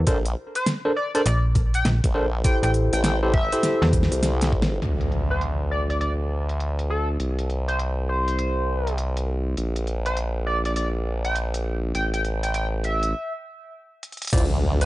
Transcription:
0.07 A#1 D4 A4 A#4 C5, kick, closed hi-hat
0.26 closed hi-hat
0.55 C5, closed hi-hat
0.66 snare, closed hi-hat
0.85 D4 A4 A#4 C5
0.96 D5
1.15 D4 A4 A#4 C5 D5, closed hi-hat
1.26 A#1 D5, closed hi-hat
1.55 kick, closed hi-hat
1.74 G5, closed hi-hat
1.85 A#1, snare, closed hi-hat
2.04 A#1, kick, closed hi-hat
2.15 D4 A4 A#4 C5
2.44 E4 G4 A4 C5 G5, kick, closed hi-hat
2.63 A1 G5, closed hi-hat
2.74 closed hi-hat
2.93 A1 G5, closed hi-hat
3.04 G5, snare, closed hi-hat
3.23 E4 G4 A4 C5
3.33 E5, kick
3.52 E4 G4 A4 C5, closed hi-hat
3.63 snare, closed hi-hat
3.82 E2, snare
3.93 kick, closed hi-hat
4.03 snare
4.12 C2, closed hi-hat
4.23 snare, closed hi-hat
4.41 snare, closed hi-hat
4.53 kick
4.62 snare
4.82 D2, closed hi-hat, impact
5.01 closed hi-hat
5.12 closed hi-hat
5.31 C5
5.41 closed hi-hat
5.71 D5
5.90 D5, closed hi-hat
6.01 D5, closed hi-hat
6.49 closed hi-hat
6.60 closed hi-hat
6.79 closed hi-hat
6.90 A4
7.20 C2, closed hi-hat
7.39 closed hi-hat
7.50 closed hi-hat
7.68 C5, closed hi-hat
7.79 closed hi-hat
8.09 C5
8.28 closed hi-hat
8.39 closed hi-hat
8.87 closed hi-hat
8.98 closed hi-hat
9.17 closed hi-hat
9.57 A#1, closed hi-hat
9.76 closed hi-hat
9.87 closed hi-hat
10.06 C5, closed hi-hat
10.17 closed hi-hat
10.46 D5
10.65 D5, closed hi-hat
10.76 D5, closed hi-hat
11.24 G5, closed hi-hat
11.36 closed hi-hat
11.54 closed hi-hat
11.95 A1 G5, closed hi-hat
12.14 G5, closed hi-hat
12.25 closed hi-hat
12.43 G5, closed hi-hat
12.54 G5, closed hi-hat
12.84 E5, closed hi-hat
13.03 closed hi-hat
14.03 closed hi-hat
14.12 closed hi-hat
14.17 closed hi-hat
14.22 closed hi-hat
14.25 closed hi-hat
14.27 closed hi-hat
14.30 D2 E4 F4 C5 D5, closed hi-hat, impact
14.33 kick, closed hi-hat, crash
14.38 closed hi-hat
14.81 C5, closed hi-hat

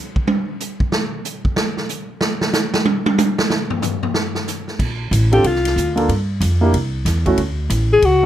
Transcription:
0.16 kick
0.27 high tom
0.60 hi-hat pedal
0.80 kick
0.92 snare
1.25 hi-hat pedal
1.45 kick
1.56 snare
1.77 snare
1.89 hi-hat pedal
2.21 snare
2.41 snare
2.53 snare, hi-hat pedal
2.74 snare
2.85 high tom
3.06 high tom
3.18 hi-hat pedal, high tom
3.39 snare
3.50 snare
3.70 floor tom
3.82 floor tom, hi-hat pedal
4.03 floor tom
4.14 snare
4.35 snare
4.47 snare, hi-hat pedal
4.68 snare
4.79 A#1, kick, crash
5.11 A1, kick, hi-hat pedal, ride
5.32 C4 D4 F4 G4 A4, ride
5.44 C2 F4, kick, ride
5.55 snare
5.65 snare, ride
5.76 D2, kick, hi-hat pedal
5.96 A#3 D4 F4 A4, ride
6.09 G2, kick, ride
6.41 F2, kick, hi-hat pedal, ride
6.61 A#3 D4 E4 G4
6.73 C2, kick, ride
7.05 E2, kick, snare, hi-hat pedal, ride
7.26 A3 C#4 E4 F#4, kick, ride
7.38 D2, kick, ride
7.70 A1, kick, hi-hat pedal, ride
7.93 G#4
8.02 C#2 F#4, kick, ride

